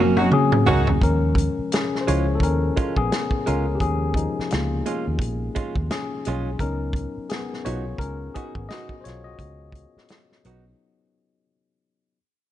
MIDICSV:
0, 0, Header, 1, 8, 480
1, 0, Start_track
1, 0, Key_signature, -6, "minor"
1, 0, Tempo, 697674
1, 698, Time_signature, 4, 2, 24, 8
1, 8611, End_track
2, 0, Start_track
2, 0, Title_t, "Horn section"
2, 0, Program_c, 0, 61
2, 115, Note_on_c, 0, 63, 70
2, 117, Note_on_c, 0, 54, 66
2, 117, Note_on_c, 0, 61, 70
2, 117, Note_on_c, 0, 66, 72
2, 201, Note_off_c, 0, 63, 0
2, 203, Note_off_c, 0, 54, 0
2, 203, Note_off_c, 0, 61, 0
2, 203, Note_off_c, 0, 66, 0
2, 457, Note_on_c, 0, 61, 76
2, 458, Note_on_c, 0, 54, 78
2, 458, Note_on_c, 0, 63, 86
2, 458, Note_on_c, 0, 66, 85
2, 610, Note_off_c, 0, 61, 0
2, 611, Note_off_c, 0, 54, 0
2, 611, Note_off_c, 0, 63, 0
2, 611, Note_off_c, 0, 66, 0
2, 8611, End_track
3, 0, Start_track
3, 0, Title_t, "Hollow-body jazz guitar"
3, 0, Program_c, 1, 26
3, 0, Note_on_c, 1, 58, 65
3, 0, Note_on_c, 1, 61, 69
3, 0, Note_on_c, 1, 66, 69
3, 114, Note_off_c, 1, 58, 0
3, 116, Note_off_c, 1, 61, 0
3, 116, Note_off_c, 1, 66, 0
3, 469, Note_on_c, 1, 61, 62
3, 470, Note_on_c, 1, 58, 59
3, 476, Note_on_c, 1, 66, 63
3, 593, Note_off_c, 1, 58, 0
3, 593, Note_off_c, 1, 61, 0
3, 596, Note_off_c, 1, 66, 0
3, 1427, Note_on_c, 1, 56, 58
3, 1430, Note_on_c, 1, 61, 59
3, 1430, Note_on_c, 1, 65, 57
3, 1552, Note_off_c, 1, 56, 0
3, 1553, Note_off_c, 1, 61, 0
3, 1554, Note_off_c, 1, 65, 0
3, 1902, Note_on_c, 1, 56, 53
3, 1908, Note_on_c, 1, 61, 63
3, 1908, Note_on_c, 1, 65, 56
3, 2030, Note_off_c, 1, 56, 0
3, 2032, Note_off_c, 1, 61, 0
3, 2032, Note_off_c, 1, 65, 0
3, 2382, Note_on_c, 1, 56, 55
3, 2389, Note_on_c, 1, 61, 63
3, 2391, Note_on_c, 1, 65, 61
3, 2510, Note_off_c, 1, 56, 0
3, 2513, Note_off_c, 1, 61, 0
3, 2514, Note_off_c, 1, 65, 0
3, 3342, Note_on_c, 1, 56, 60
3, 3350, Note_on_c, 1, 61, 53
3, 3350, Note_on_c, 1, 65, 55
3, 3470, Note_off_c, 1, 56, 0
3, 3473, Note_off_c, 1, 61, 0
3, 3473, Note_off_c, 1, 65, 0
3, 3819, Note_on_c, 1, 56, 58
3, 3826, Note_on_c, 1, 61, 58
3, 3828, Note_on_c, 1, 65, 62
3, 3948, Note_off_c, 1, 56, 0
3, 3951, Note_off_c, 1, 61, 0
3, 3952, Note_off_c, 1, 65, 0
3, 4312, Note_on_c, 1, 56, 71
3, 4319, Note_on_c, 1, 61, 81
3, 4321, Note_on_c, 1, 65, 84
3, 4463, Note_off_c, 1, 56, 0
3, 4466, Note_off_c, 1, 61, 0
3, 4468, Note_off_c, 1, 65, 0
3, 5266, Note_on_c, 1, 59, 60
3, 5268, Note_on_c, 1, 63, 57
3, 5276, Note_on_c, 1, 66, 59
3, 5392, Note_off_c, 1, 59, 0
3, 5392, Note_off_c, 1, 63, 0
3, 5396, Note_off_c, 1, 66, 0
3, 5746, Note_on_c, 1, 59, 60
3, 5750, Note_on_c, 1, 63, 55
3, 5756, Note_on_c, 1, 66, 66
3, 5872, Note_off_c, 1, 59, 0
3, 5873, Note_off_c, 1, 63, 0
3, 5877, Note_off_c, 1, 66, 0
3, 5991, Note_on_c, 1, 59, 63
3, 5995, Note_on_c, 1, 63, 70
3, 6000, Note_on_c, 1, 66, 65
3, 6143, Note_off_c, 1, 59, 0
3, 6144, Note_off_c, 1, 63, 0
3, 6147, Note_off_c, 1, 66, 0
3, 7194, Note_on_c, 1, 59, 51
3, 7200, Note_on_c, 1, 66, 57
3, 7201, Note_on_c, 1, 63, 48
3, 7315, Note_off_c, 1, 59, 0
3, 7318, Note_off_c, 1, 66, 0
3, 7319, Note_off_c, 1, 63, 0
3, 8611, End_track
4, 0, Start_track
4, 0, Title_t, "Tine electric piano"
4, 0, Program_c, 2, 4
4, 0, Control_c, 2, 64, 127
4, 0, Note_on_c, 2, 54, 53
4, 0, Note_on_c, 2, 58, 49
4, 0, Note_on_c, 2, 60, 47
4, 0, Note_on_c, 2, 61, 66
4, 0, Note_on_c, 2, 66, 88
4, 2, Note_off_c, 2, 61, 0
4, 2, Note_on_c, 2, 61, 48
4, 8, Note_off_c, 2, 66, 0
4, 8, Note_on_c, 2, 66, 57
4, 225, Note_off_c, 2, 61, 0
4, 229, Note_on_c, 2, 68, 92
4, 233, Note_on_c, 2, 61, 69
4, 676, Note_off_c, 2, 68, 0
4, 678, Note_off_c, 2, 61, 0
4, 698, Note_off_c, 2, 54, 0
4, 702, Note_off_c, 2, 58, 0
4, 706, Note_off_c, 2, 60, 0
4, 706, Note_on_c, 2, 53, 50
4, 707, Control_c, 2, 64, 0
4, 709, Note_on_c, 2, 56, 45
4, 711, Note_on_c, 2, 70, 86
4, 713, Note_off_c, 2, 66, 0
4, 713, Note_on_c, 2, 61, 61
4, 847, Control_c, 2, 64, 127
4, 1037, Note_off_c, 2, 53, 0
4, 1039, Note_off_c, 2, 56, 0
4, 1042, Note_off_c, 2, 61, 0
4, 1194, Note_on_c, 2, 68, 71
4, 1199, Note_off_c, 2, 70, 0
4, 1199, Note_on_c, 2, 61, 64
4, 1376, Note_off_c, 2, 61, 0
4, 1383, Note_on_c, 2, 72, 58
4, 1392, Note_off_c, 2, 68, 0
4, 1420, Note_off_c, 2, 72, 0
4, 1430, Note_on_c, 2, 53, 45
4, 1432, Note_on_c, 2, 73, 81
4, 1434, Note_on_c, 2, 56, 38
4, 1436, Note_on_c, 2, 61, 46
4, 1440, Note_on_c, 2, 64, 63
4, 1616, Note_off_c, 2, 64, 0
4, 1618, Note_on_c, 2, 69, 60
4, 1631, Note_off_c, 2, 73, 0
4, 1640, Note_off_c, 2, 53, 0
4, 1643, Note_off_c, 2, 56, 0
4, 1644, Note_off_c, 2, 61, 0
4, 1658, Note_off_c, 2, 69, 0
4, 1672, Note_on_c, 2, 70, 88
4, 1678, Note_on_c, 2, 61, 68
4, 2023, Note_off_c, 2, 61, 0
4, 2046, Note_on_c, 2, 68, 93
4, 2056, Note_on_c, 2, 59, 70
4, 2057, Note_off_c, 2, 70, 0
4, 2364, Note_off_c, 2, 59, 0
4, 2387, Note_on_c, 2, 70, 80
4, 2392, Note_off_c, 2, 68, 0
4, 2393, Note_on_c, 2, 61, 56
4, 2572, Note_off_c, 2, 61, 0
4, 2581, Note_on_c, 2, 67, 61
4, 2589, Note_off_c, 2, 70, 0
4, 2619, Note_off_c, 2, 67, 0
4, 2619, Note_on_c, 2, 53, 50
4, 2619, Note_on_c, 2, 68, 86
4, 2625, Note_on_c, 2, 56, 46
4, 2629, Note_on_c, 2, 61, 63
4, 2842, Note_off_c, 2, 68, 0
4, 2847, Note_off_c, 2, 61, 0
4, 2861, Note_on_c, 2, 63, 71
4, 2865, Note_off_c, 2, 53, 0
4, 2873, Note_on_c, 2, 53, 53
4, 2957, Note_off_c, 2, 56, 0
4, 3089, Note_off_c, 2, 53, 0
4, 3102, Note_on_c, 2, 65, 75
4, 3107, Note_off_c, 2, 63, 0
4, 3113, Note_on_c, 2, 58, 58
4, 4033, Note_off_c, 2, 65, 0
4, 4038, Note_off_c, 2, 58, 0
4, 4063, Note_on_c, 2, 68, 81
4, 4075, Note_on_c, 2, 61, 60
4, 4519, Note_off_c, 2, 61, 0
4, 4543, Note_on_c, 2, 70, 97
4, 4548, Control_c, 2, 64, 0
4, 4548, Note_on_c, 2, 54, 51
4, 4550, Note_on_c, 2, 59, 44
4, 4553, Note_on_c, 2, 63, 54
4, 4555, Note_off_c, 2, 68, 0
4, 4558, Note_on_c, 2, 61, 67
4, 4687, Control_c, 2, 64, 127
4, 5000, Note_off_c, 2, 61, 0
4, 5019, Note_on_c, 2, 68, 78
4, 5022, Note_off_c, 2, 59, 0
4, 5031, Note_on_c, 2, 59, 65
4, 5035, Note_off_c, 2, 70, 0
4, 5236, Note_off_c, 2, 54, 0
4, 5238, Note_off_c, 2, 63, 0
4, 5242, Note_off_c, 2, 68, 0
4, 5248, Note_off_c, 2, 59, 0
4, 5262, Note_on_c, 2, 73, 82
4, 5275, Note_on_c, 2, 65, 68
4, 5490, Note_off_c, 2, 65, 0
4, 5496, Note_on_c, 2, 70, 95
4, 5507, Note_off_c, 2, 73, 0
4, 5513, Note_on_c, 2, 61, 65
4, 5604, Note_off_c, 2, 70, 0
4, 5618, Note_off_c, 2, 61, 0
4, 5740, Note_on_c, 2, 68, 82
4, 5755, Note_on_c, 2, 59, 58
4, 5963, Note_off_c, 2, 68, 0
4, 5970, Note_off_c, 2, 59, 0
4, 5977, Note_on_c, 2, 75, 97
4, 5992, Note_on_c, 2, 66, 73
4, 6186, Note_off_c, 2, 66, 0
4, 6198, Note_on_c, 2, 72, 58
4, 6199, Note_off_c, 2, 75, 0
4, 6220, Note_off_c, 2, 72, 0
4, 6220, Note_on_c, 2, 73, 86
4, 6235, Note_on_c, 2, 65, 71
4, 6358, Note_off_c, 2, 65, 0
4, 6359, Note_on_c, 2, 75, 84
4, 6364, Note_off_c, 2, 73, 0
4, 6374, Note_on_c, 2, 66, 66
4, 7185, Note_on_c, 2, 54, 46
4, 7188, Note_on_c, 2, 59, 40
4, 7190, Note_on_c, 2, 63, 48
4, 7871, Note_off_c, 2, 75, 0
4, 7874, Note_off_c, 2, 54, 0
4, 7876, Note_off_c, 2, 59, 0
4, 7877, Note_off_c, 2, 63, 0
4, 7879, Note_off_c, 2, 66, 0
4, 8386, Control_c, 2, 64, 0
4, 8611, End_track
5, 0, Start_track
5, 0, Title_t, "Fingered electric bass"
5, 0, Program_c, 3, 33
5, 0, Note_on_c, 3, 30, 79
5, 198, Note_off_c, 3, 30, 0
5, 474, Note_on_c, 3, 37, 90
5, 663, Note_off_c, 3, 37, 0
5, 706, Note_on_c, 3, 39, 95
5, 1013, Note_off_c, 3, 39, 0
5, 1433, Note_on_c, 3, 37, 76
5, 1623, Note_off_c, 3, 37, 0
5, 1658, Note_on_c, 3, 39, 76
5, 1854, Note_off_c, 3, 39, 0
5, 2045, Note_on_c, 3, 34, 78
5, 2124, Note_off_c, 3, 34, 0
5, 2394, Note_on_c, 3, 37, 81
5, 2583, Note_off_c, 3, 37, 0
5, 2625, Note_on_c, 3, 39, 89
5, 2932, Note_off_c, 3, 39, 0
5, 3118, Note_on_c, 3, 37, 84
5, 3306, Note_off_c, 3, 37, 0
5, 3491, Note_on_c, 3, 39, 70
5, 3567, Note_off_c, 3, 39, 0
5, 3575, Note_on_c, 3, 34, 88
5, 3772, Note_off_c, 3, 34, 0
5, 3965, Note_on_c, 3, 39, 81
5, 4044, Note_off_c, 3, 39, 0
5, 4315, Note_on_c, 3, 35, 95
5, 4504, Note_off_c, 3, 35, 0
5, 4544, Note_on_c, 3, 37, 89
5, 4852, Note_off_c, 3, 37, 0
5, 5274, Note_on_c, 3, 35, 78
5, 5463, Note_off_c, 3, 35, 0
5, 5499, Note_on_c, 3, 37, 80
5, 5694, Note_off_c, 3, 37, 0
5, 5891, Note_on_c, 3, 32, 81
5, 5967, Note_off_c, 3, 32, 0
5, 6232, Note_on_c, 3, 35, 78
5, 6422, Note_off_c, 3, 35, 0
5, 6466, Note_on_c, 3, 37, 86
5, 6773, Note_off_c, 3, 37, 0
5, 7191, Note_on_c, 3, 35, 71
5, 7381, Note_off_c, 3, 35, 0
5, 8611, End_track
6, 0, Start_track
6, 0, Title_t, "Muted fingered electric bass strokes"
6, 1093, Note_on_c, 9, 29, 38
6, 1162, Note_off_c, 9, 29, 0
6, 3020, Note_on_c, 9, 29, 43
6, 3089, Note_off_c, 9, 29, 0
6, 4936, Note_on_c, 9, 29, 42
6, 5005, Note_off_c, 9, 29, 0
6, 6856, Note_on_c, 9, 29, 37
6, 6925, Note_off_c, 9, 29, 0
6, 8611, End_track
7, 0, Start_track
7, 0, Title_t, "Muted hollow-body jazz guitar strokes"
7, 4070, Note_on_c, 9, 29, 39
7, 4139, Note_off_c, 9, 29, 0
7, 8611, End_track
8, 0, Start_track
8, 0, Title_t, "Drums"
8, 115, Note_on_c, 9, 48, 79
8, 184, Note_off_c, 9, 48, 0
8, 217, Note_on_c, 9, 47, 95
8, 286, Note_off_c, 9, 47, 0
8, 359, Note_on_c, 9, 45, 88
8, 428, Note_off_c, 9, 45, 0
8, 458, Note_on_c, 9, 43, 106
8, 526, Note_off_c, 9, 43, 0
8, 600, Note_on_c, 9, 43, 100
8, 669, Note_off_c, 9, 43, 0
8, 698, Note_on_c, 9, 36, 90
8, 709, Note_on_c, 9, 42, 58
8, 767, Note_off_c, 9, 36, 0
8, 778, Note_off_c, 9, 42, 0
8, 929, Note_on_c, 9, 36, 80
8, 949, Note_on_c, 9, 42, 63
8, 998, Note_off_c, 9, 36, 0
8, 1018, Note_off_c, 9, 42, 0
8, 1184, Note_on_c, 9, 42, 72
8, 1197, Note_on_c, 9, 38, 97
8, 1252, Note_off_c, 9, 42, 0
8, 1266, Note_off_c, 9, 38, 0
8, 1344, Note_on_c, 9, 38, 29
8, 1413, Note_off_c, 9, 38, 0
8, 1431, Note_on_c, 9, 42, 59
8, 1499, Note_off_c, 9, 42, 0
8, 1652, Note_on_c, 9, 36, 79
8, 1672, Note_on_c, 9, 42, 70
8, 1720, Note_off_c, 9, 36, 0
8, 1740, Note_off_c, 9, 42, 0
8, 1905, Note_on_c, 9, 42, 61
8, 1909, Note_on_c, 9, 36, 85
8, 1974, Note_off_c, 9, 42, 0
8, 1977, Note_off_c, 9, 36, 0
8, 2040, Note_on_c, 9, 36, 86
8, 2109, Note_off_c, 9, 36, 0
8, 2148, Note_on_c, 9, 42, 74
8, 2149, Note_on_c, 9, 38, 97
8, 2216, Note_off_c, 9, 42, 0
8, 2218, Note_off_c, 9, 38, 0
8, 2275, Note_on_c, 9, 36, 76
8, 2344, Note_off_c, 9, 36, 0
8, 2386, Note_on_c, 9, 42, 67
8, 2454, Note_off_c, 9, 42, 0
8, 2617, Note_on_c, 9, 36, 85
8, 2624, Note_on_c, 9, 42, 60
8, 2685, Note_off_c, 9, 36, 0
8, 2693, Note_off_c, 9, 42, 0
8, 2849, Note_on_c, 9, 36, 78
8, 2869, Note_on_c, 9, 42, 58
8, 2918, Note_off_c, 9, 36, 0
8, 2937, Note_off_c, 9, 42, 0
8, 3026, Note_on_c, 9, 38, 26
8, 3094, Note_off_c, 9, 38, 0
8, 3100, Note_on_c, 9, 42, 63
8, 3114, Note_on_c, 9, 38, 93
8, 3169, Note_off_c, 9, 42, 0
8, 3183, Note_off_c, 9, 38, 0
8, 3344, Note_on_c, 9, 42, 59
8, 3412, Note_off_c, 9, 42, 0
8, 3569, Note_on_c, 9, 36, 80
8, 3586, Note_on_c, 9, 42, 69
8, 3638, Note_off_c, 9, 36, 0
8, 3655, Note_off_c, 9, 42, 0
8, 3823, Note_on_c, 9, 42, 64
8, 3827, Note_on_c, 9, 36, 80
8, 3892, Note_off_c, 9, 42, 0
8, 3896, Note_off_c, 9, 36, 0
8, 3959, Note_on_c, 9, 36, 90
8, 4028, Note_off_c, 9, 36, 0
8, 4064, Note_on_c, 9, 42, 83
8, 4065, Note_on_c, 9, 38, 98
8, 4132, Note_off_c, 9, 42, 0
8, 4134, Note_off_c, 9, 38, 0
8, 4300, Note_on_c, 9, 42, 61
8, 4369, Note_off_c, 9, 42, 0
8, 4536, Note_on_c, 9, 36, 82
8, 4541, Note_on_c, 9, 42, 59
8, 4605, Note_off_c, 9, 36, 0
8, 4610, Note_off_c, 9, 42, 0
8, 4769, Note_on_c, 9, 36, 85
8, 4788, Note_on_c, 9, 42, 52
8, 4838, Note_off_c, 9, 36, 0
8, 4856, Note_off_c, 9, 42, 0
8, 5019, Note_on_c, 9, 42, 58
8, 5033, Note_on_c, 9, 38, 87
8, 5088, Note_off_c, 9, 42, 0
8, 5102, Note_off_c, 9, 38, 0
8, 5184, Note_on_c, 9, 38, 29
8, 5253, Note_off_c, 9, 38, 0
8, 5268, Note_on_c, 9, 42, 59
8, 5336, Note_off_c, 9, 42, 0
8, 5493, Note_on_c, 9, 36, 70
8, 5510, Note_on_c, 9, 42, 64
8, 5562, Note_off_c, 9, 36, 0
8, 5579, Note_off_c, 9, 42, 0
8, 5748, Note_on_c, 9, 42, 62
8, 5751, Note_on_c, 9, 36, 72
8, 5817, Note_off_c, 9, 42, 0
8, 5820, Note_off_c, 9, 36, 0
8, 5883, Note_on_c, 9, 36, 89
8, 5952, Note_off_c, 9, 36, 0
8, 5989, Note_on_c, 9, 42, 74
8, 5990, Note_on_c, 9, 38, 99
8, 6058, Note_off_c, 9, 42, 0
8, 6059, Note_off_c, 9, 38, 0
8, 6117, Note_on_c, 9, 36, 75
8, 6186, Note_off_c, 9, 36, 0
8, 6226, Note_on_c, 9, 42, 59
8, 6241, Note_on_c, 9, 38, 30
8, 6295, Note_off_c, 9, 42, 0
8, 6309, Note_off_c, 9, 38, 0
8, 6458, Note_on_c, 9, 36, 79
8, 6463, Note_on_c, 9, 42, 52
8, 6527, Note_off_c, 9, 36, 0
8, 6531, Note_off_c, 9, 42, 0
8, 6690, Note_on_c, 9, 36, 79
8, 6709, Note_on_c, 9, 42, 61
8, 6759, Note_off_c, 9, 36, 0
8, 6777, Note_off_c, 9, 42, 0
8, 6865, Note_on_c, 9, 38, 28
8, 6934, Note_off_c, 9, 38, 0
8, 6939, Note_on_c, 9, 42, 61
8, 6952, Note_on_c, 9, 38, 89
8, 7007, Note_off_c, 9, 42, 0
8, 7021, Note_off_c, 9, 38, 0
8, 7100, Note_on_c, 9, 38, 27
8, 7169, Note_off_c, 9, 38, 0
8, 7187, Note_on_c, 9, 42, 52
8, 7256, Note_off_c, 9, 42, 0
8, 8611, End_track
0, 0, End_of_file